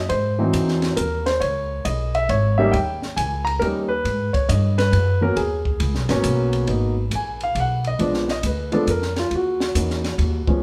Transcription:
0.00 0.10 D#5 medium
0.09 0.53 G#2 medium
0.09 0.94 C5 medium
0.09 kick soft
0.09 ride medium
0.39 0.95 E3 medium
0.39 0.95 F#3 medium
0.39 0.95 C4 medium
0.39 0.95 D#4 medium
0.53 0.96 E2 medium
0.53 kick soft
0.53 hi-hat pedal medium
0.53 ride medium
0.68 snare soft
0.82 snare soft
0.82 ride soft
0.96 1.40 D#2 medium
0.96 1.24 A#4 medium
0.96 kick soft
0.96 hi-hat pedal medium
0.96 ride medium
1.26 1.40 C5 medium
1.26 snare soft
1.26 ride soft
1.40 1.84 C#2 medium
1.40 1.86 C#5 medium
1.40 kick soft
1.40 ride medium
1.85 2.28 B1 medium
1.85 2.15 D#5 medium
1.85 kick soft
1.85 hi-hat pedal medium
1.85 ride medium
2.15 2.29 E5 medium
2.15 ride soft
2.29 2.72 G#1 medium
2.29 2.59 C#5 medium
2.29 kick soft
2.29 ride medium
2.58 2.72 G3 medium
2.58 2.72 A#3 medium
2.58 2.73 C#4 medium
2.58 2.73 D#4 medium
2.58 2.72 E5 medium
2.72 3.16 D#2 medium
2.72 3.18 G5 medium
2.72 kick soft
2.72 ride medium
3.02 snare soft
3.16 3.60 C#2 medium
3.16 3.44 G#5 medium
3.16 kick soft
3.16 hi-hat pedal medium
3.16 ride medium
3.45 3.61 A#5 loud
3.45 ride soft
3.59 4.04 D#2 medium
3.59 3.87 G3 medium
3.59 3.88 A#3 medium
3.59 3.88 C#4 medium
3.59 3.88 D#4 medium
3.59 3.66 A#4 medium
3.59 kick soft
3.59 ride soft
3.89 4.30 B4 medium
4.05 4.32 G#2 medium
4.05 kick soft
4.05 ride medium
4.33 4.49 C#5 medium
4.33 muted upright bass stroke soft
4.33 kick medium
4.33 ride soft
4.49 4.91 G2 loud
4.49 4.76 D#5 medium
4.49 kick soft
4.49 hi-hat pedal medium
4.49 ride medium
4.78 5.19 B4 loud
4.78 snare soft
4.78 ride soft
4.92 5.35 F#2 medium
4.92 kick soft
4.92 ride medium
5.21 5.35 F#3 medium
5.21 5.35 A#3 medium
5.21 5.35 B3 medium
5.21 5.36 C#4 medium
5.21 5.37 A#4 medium
5.36 5.79 D#2 medium
5.36 6.20 G#4 medium
5.36 kick soft
5.36 ride medium
5.65 kick soft
5.80 5.95 C#2 medium
5.80 kick soft
5.80 ride medium
5.95 6.09 B1 medium
5.95 snare soft
6.09 6.23 G#1 medium
6.09 6.65 F#3 medium
6.09 6.65 A#3 medium
6.09 6.65 B3 medium
6.09 6.66 C#4 medium
6.09 snare soft
6.09 ride medium
6.23 6.66 B1 loud
6.23 kick soft
6.23 hi-hat pedal medium
6.23 ride medium
6.53 ride soft
6.67 7.10 G#1 medium
6.67 6.94 F#3 medium
6.67 6.94 A#3 medium
6.67 6.94 B3 soft
6.67 6.94 D#4 medium
6.67 kick soft
6.67 ride medium
7.11 7.54 A#1 medium
7.11 kick soft
7.11 hi-hat pedal medium
7.11 ride medium
7.15 7.42 G#5 medium
7.41 7.57 F5 medium
7.41 ride soft
7.55 7.98 B1 medium
7.55 kick soft
7.55 ride medium
7.60 7.86 F#5 medium
7.84 8.01 D#5 medium
7.84 ride soft
7.99 8.42 A#1 medium
7.99 8.25 F3 medium
7.99 8.25 G#3 medium
7.99 8.26 B3 medium
7.99 8.26 D4 medium
7.99 8.29 D5 medium
7.99 kick soft
7.99 ride medium
8.14 snare soft
8.28 8.44 D#5 medium
8.28 snare soft
8.43 8.86 D2 medium
8.43 8.73 B4 medium
8.43 kick soft
8.43 hi-hat pedal medium
8.43 ride medium
8.72 8.86 F3 medium
8.72 8.86 G#3 medium
8.72 8.86 B3 medium
8.72 8.86 D4 medium
8.72 8.88 A4 medium
8.72 ride soft
8.87 9.30 F2 medium
8.87 9.17 A#4 medium
8.87 kick soft
8.87 hi-hat pedal medium
8.87 ride medium
9.02 snare soft
9.16 9.32 F4 medium
9.16 snare soft
9.16 ride soft
9.31 9.73 D#2 medium
9.31 kick soft
9.31 ride medium
9.36 10.61 F#4 medium
9.60 snare medium
9.75 10.17 E2 medium
9.75 10.01 F#3 soft
9.75 10.01 A#3 soft
9.75 10.01 C#4 soft
9.75 10.02 D#4 medium
9.75 kick soft
9.75 hi-hat pedal medium
9.75 ride medium
9.90 snare soft
10.04 snare soft
10.04 ride soft
10.18 10.45 D#2 medium
10.18 kick soft
10.18 ride medium
10.47 10.61 F3 medium
10.47 10.61 G#3 medium
10.47 10.61 B3 medium
10.47 10.61 C#4 medium
10.47 muted upright bass stroke soft
10.47 kick medium

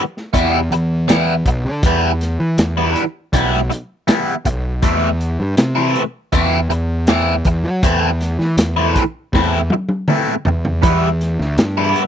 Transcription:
0.17 snare soft
0.34 0.69 E2 medium
0.34 0.58 E3 medium
0.34 0.58 G3 medium
0.34 0.58 B3 medium
0.34 0.58 E4 medium
0.34 kick medium
0.34 closed hi-hat medium
0.71 1.42 E2 medium
0.71 muted overdriven electric guitar stroke soft
0.71 closed hi-hat medium
1.08 1.33 E3 medium
1.08 1.33 G3 medium
1.08 1.33 B3 loud
1.08 1.33 E4 medium
1.08 snare loud
1.08 closed hi-hat medium
1.46 1.66 B1 medium
1.46 muted overdriven electric guitar stroke soft
1.46 kick medium
1.46 closed hi-hat medium
1.65 1.83 D3 medium
1.83 2.37 E2 medium
1.83 2.09 E3 medium
1.83 2.09 G3 medium
1.83 2.09 B3 medium
1.83 kick loud
1.83 closed hi-hat medium
1.87 2.10 E4 medium
2.21 snare soft
2.21 closed hi-hat medium
2.40 2.58 E3 medium
2.58 2.94 E2 medium
2.58 snare loud
2.58 closed hi-hat loud
2.77 3.03 E3 medium
2.77 3.02 G3 medium
2.77 3.02 B3 medium
2.77 3.02 E4 medium
2.96 closed hi-hat medium
3.33 3.69 B1 medium
3.33 3.58 E3 medium
3.33 3.58 G3 medium
3.33 3.58 B3 medium
3.33 3.58 E4 medium
3.33 kick medium
3.33 closed hi-hat medium
3.54 snare soft
3.70 muted overdriven electric guitar stroke soft
3.70 closed hi-hat medium
4.08 4.32 E3 medium
4.08 4.32 G3 medium
4.08 4.33 B3 medium
4.08 4.33 E4 loud
4.08 snare loud
4.08 closed hi-hat loud
4.45 4.81 B1 medium
4.45 muted overdriven electric guitar stroke soft
4.45 kick medium
4.45 closed hi-hat medium
4.82 5.37 E2 medium
4.82 5.07 E3 medium
4.82 5.08 A3 medium
4.82 5.08 C4 medium
4.82 5.08 E4 medium
4.82 kick loud
4.82 closed hi-hat medium
5.21 closed hi-hat medium
5.40 5.57 G2 medium
5.57 5.94 C3 medium
5.57 snare loud
5.57 closed hi-hat medium
5.76 6.02 E3 medium
5.76 6.02 A3 medium
5.76 6.01 C4 medium
5.76 6.01 E4 medium
5.95 closed hi-hat medium
6.32 6.69 E2 medium
6.32 6.58 E3 medium
6.32 6.58 A3 medium
6.32 6.58 C4 medium
6.32 6.58 E4 medium
6.32 kick medium
6.32 closed hi-hat medium
6.69 7.41 E2 medium
6.69 muted overdriven electric guitar stroke soft
6.69 closed hi-hat medium
7.07 7.33 E3 medium
7.07 7.34 A3 medium
7.07 7.33 C4 medium
7.07 7.34 E4 loud
7.07 snare loud
7.07 closed hi-hat loud
7.45 7.65 E2 medium
7.45 muted overdriven electric guitar stroke soft
7.45 kick medium
7.45 closed hi-hat medium
7.64 7.82 F#3 medium
7.83 8.37 E2 medium
7.83 8.08 E3 medium
7.83 8.08 A3 medium
7.83 8.09 C4 medium
7.83 8.09 E4 medium
7.83 kick loud
7.83 closed hi-hat medium
8.21 snare soft
8.21 closed hi-hat medium
8.39 8.57 E3 medium
8.39 snare soft
8.57 8.93 E2 medium
8.57 snare loud
8.57 closed hi-hat loud
8.76 9.02 E3 medium
8.76 9.02 A3 medium
8.76 9.02 C4 medium
8.76 9.01 E4 medium
8.96 kick medium
8.96 closed hi-hat medium
9.33 9.69 E2 medium
9.33 9.58 E3 medium
9.33 9.58 A3 medium
9.33 9.58 C4 medium
9.33 9.59 E4 medium
9.33 kick medium
9.33 snare medium
9.70 muted overdriven electric guitar stroke soft
9.70 high tom medium
9.89 high tom medium
10.08 10.33 E3 medium
10.08 10.33 A3 medium
10.08 10.33 C4 medium
10.08 10.33 E4 medium
10.08 mid tom medium
10.45 10.82 E2 loud
10.45 muted overdriven electric guitar stroke soft
10.45 floor tom medium
10.65 floor tom medium
10.83 11.37 E2 medium
10.83 11.07 E3 medium
10.83 11.07 G3 medium
10.83 11.07 B3 medium
10.83 11.08 E4 medium
10.83 kick loud
10.83 closed hi-hat medium
11.21 snare soft
11.21 closed hi-hat medium
11.39 11.57 D2 medium
11.39 snare soft
11.57 11.93 G2 medium
11.57 snare loud
11.57 closed hi-hat medium
11.78 12.02 E3 medium
11.78 12.02 G3 medium
11.78 12.02 B3 medium
11.78 12.01 E4 medium
11.96 closed hi-hat medium

